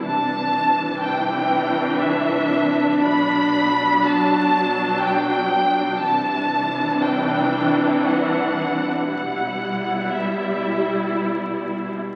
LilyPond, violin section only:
\new Staff \with { instrumentName = "Violin section" } { \time 3/4 \key c \lydian \tempo 4 = 60 a''4 g''4 e''4 | b''4 a''4 g''4 | a''4 g''4 fis''4 | fis''4 e''4 r4 | }